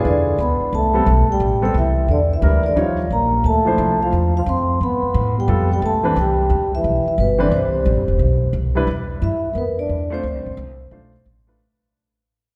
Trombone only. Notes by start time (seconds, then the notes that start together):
0.07 D3
0.41 B3
0.75 A3
1.30 G3
1.65 G3
1.76 E3
2.10 D3
2.33 E3
2.67 D3
2.77 F3
3.12 A#3
3.47 A3
4.02 F3
4.37 F3
4.48 C4
4.82 B3
5.38 G3
5.73 G3
5.84 A3
6.19 G3
6.74 E3
7.08 E3
7.19 B2
7.40 D3
7.53 C3
9.21 E4
9.53 A#3
9.57 B3
9.79 D4
10.14 C4